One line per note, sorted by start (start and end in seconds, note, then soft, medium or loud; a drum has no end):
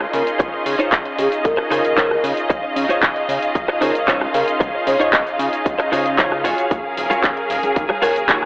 0.00 0.63 C#4 medium
0.00 0.63 D#4 medium
0.00 0.63 F4 medium
0.00 0.63 G#4 medium
0.00 6.41 D#5 medium
0.00 8.45 F5 medium
0.00 0.64 C6 loud
0.00 cross-stick medium
0.00 sub drop medium
0.13 0.23 C#3 medium
0.13 0.26 A#4 medium
0.13 muted clean electric guitar stroke soft
0.13 open hi-hat loud
0.13 shaker medium
0.27 closed hi-hat medium
0.27 shaker soft
0.39 0.49 C#2 loud
0.39 muted clean electric guitar stroke loud
0.39 kick loud
0.39 closed hi-hat medium
0.39 shaker soft
0.53 muted clean electric guitar stroke soft
0.66 0.75 C#3 medium
0.66 open hi-hat loud
0.66 shaker medium
0.79 0.90 C#2 soft
0.79 0.92 D#4 medium
0.79 0.92 F4 medium
0.79 0.92 C5 medium
0.79 0.93 C#5 medium
0.79 closed hi-hat medium
0.79 shaker soft
0.91 1.02 C#2 loud
0.91 3.65 C#4 medium
0.91 3.65 D#4 medium
0.91 3.66 F4 medium
0.91 3.66 G#4 medium
0.91 3.66 D#5 medium
0.91 kick loud
0.91 clap loud
0.91 closed hi-hat medium
0.91 shaker soft
1.05 muted clean electric guitar stroke soft
1.05 closed hi-hat soft
1.19 1.28 C#3 medium
1.19 1.31 G#4 medium
1.19 open hi-hat loud
1.19 shaker medium
1.32 closed hi-hat medium
1.32 shaker soft
1.44 1.54 C#2 medium
1.44 1.57 A#4 medium
1.44 muted clean electric guitar stroke soft
1.44 kick loud
1.44 closed hi-hat medium
1.44 shaker soft
1.57 muted clean electric guitar stroke loud
1.57 cross-stick medium
1.70 1.81 C#3 medium
1.70 1.84 D#4 medium
1.70 1.84 F4 medium
1.70 2.24 A#4 loud
1.70 1.85 C5 medium
1.70 1.85 C#5 medium
1.70 cross-stick medium
1.70 open hi-hat loud
1.70 shaker medium
1.84 1.95 C#2 soft
1.84 closed hi-hat medium
1.84 shaker soft
1.97 2.17 C#2 loud
1.97 2.10 D#4 medium
1.97 2.11 F4 medium
1.97 2.11 C5 medium
1.97 2.11 C#5 medium
1.97 kick loud
1.97 clap loud
1.97 closed hi-hat medium
1.97 shaker soft
2.11 cross-stick medium
2.23 2.33 C#3 medium
2.23 muted clean electric guitar stroke soft
2.23 open hi-hat loud
2.23 shaker medium
2.37 closed hi-hat medium
2.37 shaker soft
2.50 2.60 C#2 medium
2.50 muted clean electric guitar stroke loud
2.50 kick loud
2.50 closed hi-hat medium
2.50 shaker soft
2.63 muted clean electric guitar stroke soft
2.76 2.86 C#3 medium
2.76 open hi-hat loud
2.76 shaker medium
2.89 3.02 D#4 medium
2.89 3.03 F4 medium
2.89 3.03 C5 medium
2.89 3.03 C#5 loud
2.89 closed hi-hat medium
2.89 shaker soft
3.03 3.12 C#2 loud
3.03 kick loud
3.03 clap loud
3.03 closed hi-hat medium
3.03 shaker soft
3.16 muted clean electric guitar stroke soft
3.16 closed hi-hat soft
3.29 3.38 C#3 loud
3.29 open hi-hat loud
3.29 shaker medium
3.42 closed hi-hat medium
3.42 shaker soft
3.55 3.65 C#2 medium
3.55 muted clean electric guitar stroke soft
3.55 kick loud
3.55 closed hi-hat medium
3.55 shaker soft
3.68 muted clean electric guitar stroke loud
3.68 cross-stick medium
3.81 3.91 C#3 medium
3.81 3.95 D#4 medium
3.81 3.95 F4 medium
3.81 3.93 A#4 medium
3.81 3.95 C5 medium
3.81 3.95 C#5 medium
3.81 cross-stick medium
3.81 open hi-hat loud
3.81 shaker medium
3.94 4.05 C#2 soft
3.94 4.83 C#4 medium
3.94 4.84 D#4 medium
3.94 4.84 F4 medium
3.94 4.84 G#4 medium
3.94 4.84 C6 loud
3.94 closed hi-hat medium
3.94 shaker soft
4.08 4.27 C#2 loud
4.08 4.21 D#4 medium
4.08 4.21 F4 medium
4.08 4.21 C5 medium
4.08 4.22 C#5 loud
4.08 kick loud
4.08 clap loud
4.08 closed hi-hat medium
4.08 shaker soft
4.21 cross-stick medium
4.34 4.44 C#3 loud
4.34 4.46 A#4 loud
4.34 muted clean electric guitar stroke soft
4.34 open hi-hat loud
4.34 shaker medium
4.48 closed hi-hat medium
4.48 shaker soft
4.60 4.70 C#2 medium
4.60 muted clean electric guitar stroke loud
4.60 kick loud
4.60 closed hi-hat medium
4.60 shaker soft
4.74 muted clean electric guitar stroke soft
4.87 4.96 C#3 medium
4.87 4.97 C#5 medium
4.87 open hi-hat loud
4.87 shaker medium
5.00 5.11 C#2 soft
5.00 5.13 D#4 medium
5.00 5.13 F4 medium
5.00 5.13 C5 medium
5.00 5.14 C#5 loud
5.00 5.09 D#5 medium
5.00 closed hi-hat medium
5.00 shaker soft
5.12 5.23 C#2 loud
5.12 6.02 C#4 medium
5.12 6.03 D#4 medium
5.12 6.03 F4 medium
5.12 6.03 G#4 medium
5.12 5.22 D#5 medium
5.12 6.03 D#5 medium
5.12 kick loud
5.12 clap loud
5.12 closed hi-hat medium
5.12 shaker soft
5.26 muted clean electric guitar stroke soft
5.26 closed hi-hat soft
5.26 shaker soft
5.39 5.49 C#3 loud
5.39 open hi-hat loud
5.39 shaker medium
5.53 closed hi-hat medium
5.53 shaker soft
5.65 5.75 C#2 medium
5.65 muted clean electric guitar stroke soft
5.65 kick loud
5.65 closed hi-hat medium
5.65 shaker soft
5.78 muted clean electric guitar stroke loud
5.78 cross-stick medium
5.78 closed hi-hat soft
5.92 6.20 C#3 medium
5.92 6.05 D#4 medium
5.92 6.05 F4 medium
5.92 6.06 C5 medium
5.92 6.06 C#5 medium
5.92 cross-stick medium
5.92 open hi-hat loud
5.92 shaker medium
6.06 closed hi-hat medium
6.06 shaker soft
6.18 6.46 C#2 loud
6.18 6.32 D#4 loud
6.18 6.32 F4 medium
6.18 6.32 C5 medium
6.18 6.32 C#5 loud
6.18 kick loud
6.18 clap loud
6.18 closed hi-hat medium
6.18 shaker soft
6.32 cross-stick medium
6.44 6.54 D#1 loud
6.44 6.76 F4 medium
6.44 6.76 F#4 medium
6.44 8.45 G#4 medium
6.44 6.76 G#4 medium
6.44 6.77 C#5 medium
6.44 open hi-hat loud
6.44 shaker medium
6.57 7.86 F#3 medium
6.57 7.86 C#4 medium
6.57 7.87 G#4 medium
6.57 7.87 A#4 medium
6.57 7.86 F5 medium
6.57 closed hi-hat medium
6.57 shaker soft
6.71 6.81 D#2 medium
6.71 kick loud
6.71 closed hi-hat medium
6.71 muted conga soft
6.71 shaker soft
6.84 muted clean electric guitar stroke soft
6.97 7.07 D#1 medium
6.97 open hi-hat loud
6.97 shaker medium
7.10 7.23 F4 medium
7.10 7.24 F#4 medium
7.10 7.24 G#4 medium
7.10 7.24 C#5 medium
7.10 closed hi-hat medium
7.10 muted conga medium
7.10 shaker soft
7.24 7.33 D#2 loud
7.24 kick loud
7.24 clap loud
7.24 closed hi-hat medium
7.24 shaker soft
7.36 muted clean electric guitar stroke soft
7.36 closed hi-hat soft
7.50 7.60 D#1 loud
7.50 open hi-hat loud
7.50 shaker medium
7.63 closed hi-hat medium
7.63 muted conga soft
7.63 shaker soft
7.76 7.86 D#2 medium
7.76 muted clean electric guitar stroke soft
7.76 kick loud
7.76 closed hi-hat medium
7.76 shaker soft
7.89 muted clean electric guitar stroke loud
7.89 cross-stick medium
7.89 high conga medium
8.02 8.12 D#1 medium
8.02 8.16 F4 medium
8.02 8.16 F#4 medium
8.02 8.16 G#4 medium
8.02 8.15 A#4 loud
8.02 8.16 C#5 loud
8.02 cross-stick medium
8.02 open hi-hat loud
8.02 muted conga medium
8.02 shaker medium
8.15 8.26 D#2 soft
8.15 8.45 F#3 medium
8.15 8.45 C#4 medium
8.15 8.45 G#4 medium
8.15 8.45 A#4 loud
8.15 8.45 F5 medium
8.15 closed hi-hat medium
8.15 shaker soft
8.28 8.45 D#2 loud
8.28 8.42 F4 medium
8.28 8.42 F#4 medium
8.28 8.42 G#4 medium
8.28 8.42 C#5 loud
8.28 kick loud
8.28 clap loud
8.28 closed hi-hat medium
8.28 shaker soft